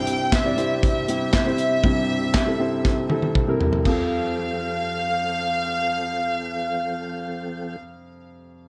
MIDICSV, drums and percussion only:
0, 0, Header, 1, 2, 480
1, 0, Start_track
1, 0, Key_signature, -1, "major"
1, 0, Tempo, 504202
1, 1746, Time_signature, 4, 2, 24, 8
1, 8264, End_track
2, 0, Start_track
2, 0, Title_t, "Drums"
2, 67, Note_on_c, 9, 42, 58
2, 162, Note_off_c, 9, 42, 0
2, 308, Note_on_c, 9, 36, 102
2, 308, Note_on_c, 9, 42, 84
2, 310, Note_on_c, 9, 38, 103
2, 317, Note_on_c, 9, 39, 80
2, 403, Note_off_c, 9, 36, 0
2, 403, Note_off_c, 9, 42, 0
2, 405, Note_off_c, 9, 38, 0
2, 412, Note_off_c, 9, 39, 0
2, 551, Note_on_c, 9, 42, 58
2, 646, Note_off_c, 9, 42, 0
2, 791, Note_on_c, 9, 36, 100
2, 795, Note_on_c, 9, 42, 68
2, 886, Note_off_c, 9, 36, 0
2, 890, Note_off_c, 9, 42, 0
2, 1032, Note_on_c, 9, 42, 65
2, 1127, Note_off_c, 9, 42, 0
2, 1266, Note_on_c, 9, 38, 89
2, 1267, Note_on_c, 9, 42, 68
2, 1269, Note_on_c, 9, 36, 98
2, 1273, Note_on_c, 9, 39, 71
2, 1362, Note_off_c, 9, 38, 0
2, 1362, Note_off_c, 9, 42, 0
2, 1364, Note_off_c, 9, 36, 0
2, 1369, Note_off_c, 9, 39, 0
2, 1505, Note_on_c, 9, 42, 55
2, 1600, Note_off_c, 9, 42, 0
2, 1747, Note_on_c, 9, 36, 89
2, 1842, Note_off_c, 9, 36, 0
2, 2229, Note_on_c, 9, 36, 95
2, 2229, Note_on_c, 9, 38, 92
2, 2236, Note_on_c, 9, 39, 83
2, 2324, Note_off_c, 9, 36, 0
2, 2324, Note_off_c, 9, 38, 0
2, 2331, Note_off_c, 9, 39, 0
2, 2712, Note_on_c, 9, 38, 46
2, 2714, Note_on_c, 9, 36, 83
2, 2808, Note_off_c, 9, 38, 0
2, 2809, Note_off_c, 9, 36, 0
2, 2949, Note_on_c, 9, 48, 49
2, 3045, Note_off_c, 9, 48, 0
2, 3070, Note_on_c, 9, 48, 49
2, 3166, Note_off_c, 9, 48, 0
2, 3192, Note_on_c, 9, 36, 83
2, 3193, Note_on_c, 9, 47, 62
2, 3288, Note_off_c, 9, 36, 0
2, 3288, Note_off_c, 9, 47, 0
2, 3433, Note_on_c, 9, 43, 72
2, 3528, Note_off_c, 9, 43, 0
2, 3549, Note_on_c, 9, 43, 67
2, 3645, Note_off_c, 9, 43, 0
2, 3668, Note_on_c, 9, 49, 59
2, 3671, Note_on_c, 9, 36, 67
2, 3763, Note_off_c, 9, 49, 0
2, 3766, Note_off_c, 9, 36, 0
2, 8264, End_track
0, 0, End_of_file